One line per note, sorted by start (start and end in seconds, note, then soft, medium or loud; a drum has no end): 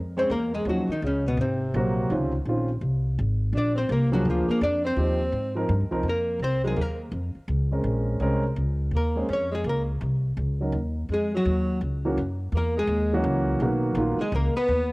0.00 0.29 F2 medium
0.17 0.28 G#3 medium
0.17 0.29 C4 medium
0.17 0.31 C4 medium
0.17 0.29 C#4 medium
0.17 0.30 C5 medium
0.17 0.29 C#5 medium
0.30 0.65 E2 medium
0.30 0.51 A#3 medium
0.30 0.53 A#3 medium
0.30 0.53 A#4 medium
0.54 0.65 G#3 medium
0.54 0.66 G#3 medium
0.54 0.66 G#4 medium
0.65 0.86 D#2 medium
0.65 0.87 F3 medium
0.65 0.88 F#3 medium
0.65 0.87 C#4 soft
0.65 0.87 D#4 soft
0.65 0.87 F#4 medium
0.69 0.90 F#3 soft
0.69 0.90 F#4 medium
0.88 1.01 D#3 medium
0.88 1.03 D#4 medium
0.88 muted upright bass stroke soft
0.93 1.04 D#3 soft
1.02 1.37 C#2 medium
1.02 1.23 C#3 medium
1.07 1.26 C#3 soft
1.07 1.26 C#4 medium
1.27 1.38 B2 medium
1.27 1.39 B2 medium
1.27 1.39 B3 medium
1.37 1.72 G#1 medium
1.37 2.43 C3 medium
1.37 2.43 C4 medium
1.41 2.44 C3 soft
1.74 2.09 A#1 medium
1.74 2.11 F#3 medium
1.74 2.11 A#3 medium
1.74 2.09 C4 medium
1.74 2.11 F#4 medium
2.10 2.45 C#2 medium
2.10 2.31 D#3 medium
2.10 2.31 C4 medium
2.10 2.31 C#4 medium
2.10 2.31 F4 medium
2.45 2.81 A#1 medium
2.45 2.67 D#3 medium
2.45 2.67 C4 medium
2.45 2.68 C#4 medium
2.45 2.68 F4 medium
2.81 3.16 C2 medium
3.19 3.52 G#1 medium
3.53 3.88 A#1 medium
3.53 3.74 D4 medium
3.57 3.78 D4 medium
3.57 3.77 D5 medium
3.75 3.88 C4 medium
3.75 3.90 C5 medium
3.79 3.91 C4 medium
3.89 4.24 C2 medium
3.89 4.11 A#3 medium
3.89 4.13 A#4 medium
3.93 4.14 A#3 medium
4.12 4.59 F3 medium
4.12 4.25 F#3 medium
4.12 4.26 F#3 medium
4.12 4.59 A#3 medium
4.12 4.59 D4 medium
4.12 4.26 F#4 medium
4.12 4.59 G#4 medium
4.25 4.47 D2 medium
4.25 4.47 F3 medium
4.30 4.50 F3 soft
4.30 4.50 F4 medium
4.48 4.61 A#3 medium
4.48 4.63 A#3 medium
4.48 4.63 A#4 medium
4.48 muted upright bass stroke soft
4.61 4.96 F2 medium
4.61 4.83 D4 medium
4.61 4.85 D4 medium
4.61 4.85 D5 medium
4.84 5.66 C4 medium
4.84 5.67 C4 medium
4.84 5.67 C5 medium
4.96 5.32 D#2 medium
4.96 5.18 F3 medium
4.96 5.18 C4 medium
4.96 5.18 D#4 medium
4.96 5.18 G4 medium
5.32 5.68 G#2 medium
5.55 5.68 F3 medium
5.55 5.68 C4 medium
5.55 5.68 D#4 medium
5.55 5.69 A#4 medium
5.69 5.82 G2 medium
5.81 5.91 D#2 soft
5.91 6.02 C2 medium
5.91 6.04 F3 medium
5.91 6.04 C4 medium
5.91 6.04 D#4 medium
5.91 6.04 A#4 medium
6.03 6.39 F2 medium
6.03 6.40 A#3 medium
6.09 6.41 A#4 medium
6.39 6.75 C2 medium
6.39 6.63 C4 medium
6.44 6.65 C5 medium
6.64 6.76 F#3 medium
6.64 6.78 G#3 medium
6.64 6.76 C4 medium
6.64 6.77 D#4 medium
6.64 6.81 G#4 medium
6.64 6.77 A#4 medium
6.76 7.11 D#2 medium
6.76 7.00 A#3 medium
6.81 7.02 A#4 medium
7.12 7.34 F2 medium
7.35 muted upright bass stroke soft
7.48 7.83 C#2 medium
7.71 8.19 G#3 medium
7.71 8.19 C4 soft
7.71 8.19 C#4 medium
7.71 8.19 A#4 medium
7.84 8.19 A#1 medium
8.20 8.56 C2 medium
8.20 8.42 G#3 medium
8.20 8.42 C4 medium
8.20 8.42 C#4 medium
8.20 8.42 A#4 medium
8.56 8.91 C#2 medium
8.91 9.27 D#2 medium
8.95 9.28 A#3 medium
8.95 9.29 A#4 medium
9.15 9.28 G#3 medium
9.15 9.28 C4 medium
9.15 9.29 C#4 soft
9.15 9.29 G#4 medium
9.29 9.64 F2 medium
9.29 9.51 C#4 medium
9.33 9.54 C#5 medium
9.51 9.64 G#3 medium
9.51 9.67 G#4 medium
9.64 10.00 C#2 medium
9.64 9.87 A#3 medium
9.69 9.82 A#4 medium
10.01 10.36 C2 medium
10.37 10.72 C#2 medium
10.61 10.73 F#3 soft
10.61 10.73 C#4 soft
10.61 10.73 D#4 soft
10.61 10.73 A#4 medium
10.72 11.08 D#2 medium
11.09 11.44 F2 medium
11.09 11.32 G#3 medium
11.14 11.34 G#3 soft
11.14 11.34 G#4 medium
11.34 11.79 F#3 medium
11.34 11.81 F#3 medium
11.34 11.81 F#4 medium
11.45 11.80 D#2 medium
11.81 12.16 C#2 medium
12.05 12.16 E3 medium
12.05 12.17 F#3 medium
12.05 12.17 A#3 medium
12.05 12.17 C#4 medium
12.05 12.17 F#4 medium
12.17 12.51 F#2 medium
12.52 12.87 E2 medium
12.52 12.75 A#3 medium
12.57 12.77 A#3 medium
12.57 12.77 A#4 medium
12.76 13.22 G#3 medium
12.76 13.24 G#3 medium
12.76 13.24 G#4 medium
12.87 13.23 D#2 medium
13.13 13.59 E3 medium
13.13 13.59 F#3 medium
13.13 13.60 A#3 medium
13.13 13.60 C#4 medium
13.13 13.60 F#4 medium
13.24 13.59 C#2 medium
13.60 13.94 B1 medium
13.60 13.95 D#3 medium
13.60 13.96 F#3 medium
13.60 13.96 A#3 medium
13.60 13.97 B3 medium
13.60 13.97 F#4 medium
13.95 14.17 A#1 medium
13.95 14.17 D#3 medium
13.95 14.18 F#3 medium
13.95 14.18 A#3 medium
13.95 14.18 B3 medium
13.95 14.18 F4 medium
14.18 14.33 G#3 medium
14.18 14.34 G#3 medium
14.18 14.34 G#4 medium
14.18 muted upright bass stroke soft
14.32 14.53 C#2 medium
14.32 14.55 A#3 medium
14.32 14.56 A#3 medium
14.32 14.56 A#4 medium
14.54 14.90 B3 medium
14.54 14.91 B3 medium
14.54 14.90 B4 medium
14.54 muted upright bass stroke soft
14.68 14.92 D#2 medium